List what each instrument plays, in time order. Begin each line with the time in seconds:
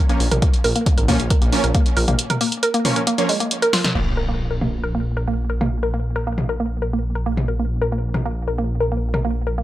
0.09 synth stab F3 A#3 C#4, synth arpeggio sound A#3, closed hi-hat
0.20 detuned saw bass A#1, open hi-hat
0.31 detuned saw bass A#1, synth arpeggio sound A#4, closed hi-hat, mid tom
0.42 synth arpeggio sound A#3, kick, closed hi-hat
0.54 closed hi-hat
0.64 detuned saw bass A#1, synth arpeggio sound A#4, open hi-hat
0.76 synth arpeggio sound A#3, closed hi-hat
0.86 kick, closed hi-hat
0.98 detuned saw bass G#1, synth arpeggio sound A#4, closed hi-hat
1.08 synth stab F3 A#3 C#4, synth arpeggio sound A#3, kick, open hi-hat, mid tom
1.20 detuned saw bass A#1, closed hi-hat
1.30 synth arpeggio sound A#4, kick, closed hi-hat
1.42 detuned saw bass A#1, synth arpeggio sound A#3, closed hi-hat
1.52 synth stab F3 A#3 C#4, open hi-hat
1.64 detuned saw bass A#1, synth arpeggio sound A#4, closed hi-hat
1.75 synth arpeggio sound A#3, kick, closed hi-hat
1.86 closed hi-hat
1.97 detuned saw bass A#1, synth arpeggio sound A#4, open hi-hat
2.08 detuned saw bass A#1, synth arpeggio sound A#3, closed hi-hat, mid tom
2.19 closed hi-hat
2.30 synth arpeggio sound A#4, closed hi-hat, mid tom
2.41 synth arpeggio sound A#3, open hi-hat
2.52 closed hi-hat
2.63 synth arpeggio sound A#4, closed hi-hat
2.74 synth arpeggio sound A#3, closed hi-hat
2.85 synth stab F3 A#3 C#4, open hi-hat, mid tom
2.96 synth arpeggio sound A#4, closed hi-hat
3.07 synth arpeggio sound A#3, closed hi-hat
3.18 synth stab F3 A#3 C#4, closed hi-hat
3.29 synth arpeggio sound G#3, open hi-hat
3.40 synth arpeggio sound A#3, closed hi-hat
3.51 closed hi-hat
3.62 synth arpeggio sound A#4, closed hi-hat
3.73 synth arpeggio sound F4, snare, open hi-hat
3.84 snare, closed hi-hat, mid tom
3.95 detuned saw bass A#1, synth arpeggio sound A#3, crash, impact
4.17 synth arpeggio sound A#4
4.29 synth arpeggio sound A#3
4.51 synth arpeggio sound A#4
4.61 synth arpeggio sound A#3, mid tom
4.84 synth arpeggio sound A#4
4.95 synth arpeggio sound A#3
5.17 synth arpeggio sound A#4
5.28 synth arpeggio sound A#3
5.50 synth arpeggio sound A#4
5.61 synth arpeggio sound A#3, mid tom
5.83 synth arpeggio sound A#4
5.94 synth arpeggio sound A#3
6.16 synth arpeggio sound A#4
6.27 synth arpeggio sound A#3
6.38 mid tom
6.49 synth arpeggio sound A#4
6.60 synth arpeggio sound A#3
6.82 synth arpeggio sound A#4
6.93 synth arpeggio sound A#3
7.15 synth arpeggio sound A#4
7.26 synth arpeggio sound A#3
7.37 mid tom
7.48 synth arpeggio sound A#4
7.59 synth arpeggio sound A#3
7.82 synth arpeggio sound A#4
7.92 synth arpeggio sound A#3
8.14 synth arpeggio sound A#4, mid tom
8.26 synth arpeggio sound A#3
8.48 synth arpeggio sound A#4
8.58 synth arpeggio sound A#3
8.80 synth arpeggio sound A#4
8.92 synth arpeggio sound A#3
9.14 synth arpeggio sound A#4, mid tom
9.25 synth arpeggio sound A#3
9.47 synth arpeggio sound A#4
9.58 synth arpeggio sound A#3